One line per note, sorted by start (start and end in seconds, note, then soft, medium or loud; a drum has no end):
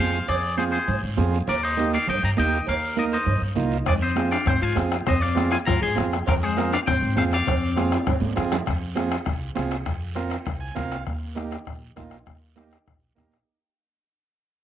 0.00 0.22 F2 loud
0.00 0.19 C4 medium
0.00 0.19 F4 medium
0.00 0.19 G#4 medium
0.00 0.26 C5 medium
0.00 0.29 F5 loud
0.13 short guiro medium
0.28 0.76 F2 medium
0.28 0.57 G#4 medium
0.28 0.56 D5 medium
0.28 cowbell medium
0.28 high conga soft
0.28 long guiro medium
0.57 0.79 C4 medium
0.57 0.79 F4 medium
0.57 0.79 G#4 medium
0.57 0.64 G#4 medium
0.57 0.63 C5 medium
0.57 high conga medium
0.57 short guiro medium
0.72 1.01 G#4 medium
0.72 1.00 C5 medium
0.72 short guiro medium
0.88 1.00 G#2 medium
0.88 cowbell medium
0.88 high conga soft
0.88 low conga medium
0.88 long guiro medium
1.03 1.15 G#2 medium
1.17 1.42 F2 loud
1.17 1.38 C4 medium
1.17 1.38 F4 medium
1.17 1.39 G#4 medium
1.17 high conga medium
1.17 low conga medium
1.17 low timbale medium
1.17 short guiro medium
1.34 short guiro medium
1.48 1.96 D#2 loud
1.48 1.62 A#4 medium
1.48 1.64 D5 medium
1.48 cowbell loud
1.48 high conga soft
1.48 low conga medium
1.48 long guiro medium
1.63 1.91 C5 medium
1.63 1.92 D#5 loud
1.77 1.98 A#3 medium
1.77 1.98 D#4 medium
1.77 1.99 G4 medium
1.77 high conga medium
1.77 short guiro medium
1.94 2.07 D5 medium
1.94 2.09 F5 medium
1.94 short guiro medium
2.07 2.20 G2 loud
2.07 2.22 D#5 medium
2.07 2.23 G5 medium
2.07 cowbell medium
2.07 high conga soft
2.07 low conga medium
2.07 long guiro medium
2.23 2.35 G2 medium
2.23 2.29 G5 medium
2.23 2.30 A#5 loud
2.37 2.62 D#2 loud
2.37 2.58 A#3 medium
2.37 2.58 D#4 medium
2.37 2.58 G4 medium
2.37 2.66 D#5 medium
2.37 2.69 G5 loud
2.37 high conga medium
2.37 short guiro medium
2.53 short guiro medium
2.67 3.15 D#2 medium
2.67 2.96 A#4 medium
2.67 2.99 F5 loud
2.67 cowbell loud
2.67 high conga soft
2.67 long guiro medium
2.97 3.18 A#3 medium
2.97 3.18 D#4 medium
2.97 3.18 A#4 medium
2.97 3.04 A#4 medium
2.97 3.04 D#5 medium
2.97 high conga medium
2.97 short guiro medium
3.12 3.41 C5 medium
3.12 3.41 D#5 medium
3.12 short guiro medium
3.26 3.39 G2 medium
3.26 cowbell medium
3.26 high conga soft
3.26 low conga medium
3.26 long guiro medium
3.41 3.54 G2 medium
3.55 3.80 C2 loud
3.55 3.77 A#3 medium
3.55 3.78 D#4 medium
3.55 3.78 F4 medium
3.55 high conga medium
3.55 low conga medium
3.55 short guiro medium
3.71 short guiro medium
3.86 4.35 F2 medium
3.86 4.03 G#3 medium
3.86 3.93 G#4 medium
3.86 3.93 D5 medium
3.86 bombo low medium
3.86 bombo rim medium
3.86 cowbell loud
3.86 high conga soft
3.86 long guiro medium
4.02 4.32 C4 medium
4.02 4.30 C5 medium
4.02 4.31 D#5 medium
4.16 4.37 C4 medium
4.16 4.37 F4 medium
4.16 4.38 G#4 medium
4.16 bombo rim medium
4.16 high conga medium
4.16 short guiro medium
4.31 4.49 D4 medium
4.31 4.46 D5 medium
4.31 4.47 F5 medium
4.31 bombo rim medium
4.31 short guiro medium
4.46 4.59 G#2 medium
4.46 4.63 C4 medium
4.46 4.61 C5 medium
4.46 4.63 G5 loud
4.46 bombo low medium
4.46 bombo rim medium
4.46 cowbell medium
4.46 high conga soft
4.46 low conga medium
4.46 long guiro medium
4.62 4.74 G#2 medium
4.62 4.77 F4 medium
4.62 4.76 F5 medium
4.62 4.77 G#5 medium
4.75 5.00 F2 loud
4.75 4.97 C4 medium
4.75 4.97 F4 medium
4.75 4.97 G#4 medium
4.75 bombo rim medium
4.75 high conga medium
4.75 short guiro medium
4.92 bombo rim medium
4.92 short guiro medium
5.07 5.55 F2 loud
5.07 5.23 C4 medium
5.07 5.21 C5 medium
5.07 5.22 D#5 medium
5.07 bombo low medium
5.07 bombo rim medium
5.07 cowbell loud
5.07 high conga soft
5.07 long guiro medium
5.21 5.52 C4 medium
5.21 5.49 D5 medium
5.21 5.50 F5 medium
5.35 5.57 C4 medium
5.35 5.57 F4 medium
5.35 5.57 G#4 medium
5.35 bombo rim medium
5.35 high conga medium
5.35 short guiro medium
5.51 5.59 F4 medium
5.51 5.57 F5 medium
5.51 5.57 G#5 medium
5.51 bombo rim medium
5.51 short guiro medium
5.67 5.79 G#2 medium
5.67 5.81 F4 medium
5.67 5.81 F5 medium
5.67 5.80 A#5 loud
5.67 bombo low medium
5.67 bombo rim medium
5.67 cowbell medium
5.67 high conga soft
5.67 low conga medium
5.67 long guiro medium
5.81 5.94 G#2 medium
5.81 5.95 G#4 medium
5.81 5.96 G#5 medium
5.81 5.96 C6 medium
5.95 6.20 F2 loud
5.95 6.17 C4 medium
5.95 6.17 F4 medium
5.95 6.17 G#4 medium
5.95 bombo rim medium
5.95 high conga medium
5.95 short guiro medium
6.12 bombo rim medium
6.12 short guiro medium
6.27 6.75 F2 loud
6.27 6.44 F3 medium
6.27 6.32 F4 medium
6.27 6.34 A#4 medium
6.27 bombo low medium
6.27 bombo rim medium
6.27 cowbell loud
6.27 high conga soft
6.27 long guiro medium
6.43 6.72 G#3 medium
6.43 6.70 G#4 medium
6.43 6.72 C5 loud
6.56 6.77 C4 medium
6.56 6.77 F4 medium
6.56 6.77 A#4 medium
6.56 bombo rim medium
6.56 high conga medium
6.56 short guiro medium
6.72 6.79 D4 medium
6.72 6.78 D5 medium
6.72 6.79 F5 medium
6.72 bombo rim medium
6.72 short guiro medium
6.87 6.99 G#2 medium
6.87 7.14 C4 medium
6.87 7.15 C5 medium
6.87 7.14 G5 loud
6.87 bombo low medium
6.87 bombo rim medium
6.87 cowbell medium
6.87 high conga soft
6.87 low conga medium
6.87 long guiro medium
7.02 7.13 G#2 medium
7.16 7.40 F2 medium
7.16 7.37 C4 medium
7.16 7.24 C4 medium
7.16 7.37 F4 medium
7.16 7.37 G#4 medium
7.16 7.22 C5 medium
7.16 7.23 F5 medium
7.16 bombo rim medium
7.16 high conga medium
7.16 short guiro medium
7.31 8.33 C4 medium
7.31 8.33 D5 medium
7.31 8.33 F5 medium
7.31 bombo rim medium
7.31 short guiro medium
7.47 7.95 F2 loud
7.47 bombo low medium
7.47 bombo rim medium
7.47 cowbell loud
7.47 high conga soft
7.47 low conga medium
7.47 long guiro medium
7.76 7.97 C4 medium
7.76 7.97 F4 medium
7.76 7.97 G#4 medium
7.76 bombo rim medium
7.76 high conga medium
7.76 short guiro medium
7.92 bombo rim medium
7.92 high timbale medium
7.92 short guiro medium
8.06 8.18 G#2 medium
8.06 bombo low medium
8.06 bombo rim medium
8.06 cowbell medium
8.06 high conga soft
8.06 low conga medium
8.06 long guiro medium
8.21 8.33 G#2 medium
8.21 high conga medium
8.21 low timbale medium
8.36 8.60 F2 loud
8.36 8.57 C4 medium
8.36 8.57 F4 medium
8.36 8.57 G#4 medium
8.36 bombo rim medium
8.36 low conga medium
8.36 short guiro medium
8.52 bombo rim medium
8.52 low conga loud
8.52 low timbale medium
8.52 short guiro medium
8.66 9.15 F2 loud
8.66 bombo low medium
8.66 bombo rim medium
8.66 high timbale medium
8.66 long guiro medium
8.95 9.16 C4 medium
8.95 9.17 F4 medium
8.95 9.17 G#4 medium
8.95 bombo rim medium
8.95 high conga medium
8.95 high timbale medium
8.95 short guiro medium
9.11 bombo rim medium
9.11 high timbale medium
9.11 short guiro medium
9.25 9.50 C2 medium
9.25 bombo low medium
9.25 bombo rim medium
9.25 high conga soft
9.25 high timbale medium
9.25 long guiro medium
9.55 9.80 C2 medium
9.55 9.76 C4 medium
9.55 9.77 F4 medium
9.55 9.77 G#4 medium
9.55 bombo rim medium
9.55 high conga medium
9.55 high timbale medium
9.55 short guiro medium
9.71 bombo rim medium
9.71 high timbale medium
9.71 short guiro medium
9.86 10.34 F2 medium
9.86 bombo low medium
9.86 bombo rim medium
9.86 high conga soft
9.86 high timbale medium
9.86 long guiro medium
10.16 10.37 C4 medium
10.16 10.37 F4 medium
10.16 10.37 A#4 loud
10.16 bombo rim medium
10.16 high conga medium
10.16 high timbale medium
10.16 short guiro medium
10.30 bombo rim medium
10.30 high timbale medium
10.30 short guiro medium
10.46 10.70 C2 medium
10.46 bombo low medium
10.46 bombo rim medium
10.46 high conga soft
10.46 high timbale medium
10.46 long guiro medium
10.61 10.75 G#5 medium
10.75 11.01 C2 medium
10.75 10.97 C4 medium
10.75 10.97 F4 medium
10.75 10.97 A#4 medium
10.75 11.04 F5 medium
10.75 bombo low medium
10.75 bombo rim medium
10.75 high conga medium
10.75 high timbale medium
10.75 short guiro medium
10.92 bombo rim medium
10.92 high timbale medium
10.92 short guiro medium
11.07 11.55 D#2 medium
11.07 bombo low medium
11.07 bombo rim medium
11.07 high conga soft
11.07 long guiro medium
11.35 11.57 A#3 medium
11.35 11.57 D#4 medium
11.35 11.57 G4 medium
11.35 bombo rim medium
11.35 high conga medium
11.35 short guiro medium
11.51 bombo rim medium
11.51 short guiro medium
11.65 11.91 A#1 medium
11.65 bombo low medium
11.65 bombo rim medium
11.65 high conga soft
11.65 long guiro medium
11.96 12.21 A#1 medium
11.96 12.17 A#3 medium
11.96 12.17 D#4 medium
11.96 12.18 F4 medium
11.96 bombo low medium
11.96 bombo rim medium
11.96 high conga medium
11.96 short guiro medium
12.11 bombo rim medium
12.11 short guiro medium
12.26 12.75 D#2 medium
12.26 bombo low medium
12.26 bombo rim medium
12.26 high conga soft
12.26 long guiro medium
12.56 12.77 A#3 medium
12.56 12.77 D#4 medium
12.56 12.78 G4 medium
12.56 bombo rim medium
12.56 high conga medium
12.56 short guiro medium
12.71 bombo rim medium
12.71 short guiro medium
12.86 13.11 A#1 medium
12.86 bombo low medium
12.86 bombo rim medium
12.86 high conga soft
12.86 long guiro medium
13.15 13.41 A#1 medium
13.15 13.37 A#3 medium
13.15 13.37 D#4 medium
13.15 13.38 G4 medium
13.15 bombo low medium
13.15 bombo rim medium
13.15 high conga medium
13.15 short guiro medium
13.31 bombo rim medium
13.31 short guiro medium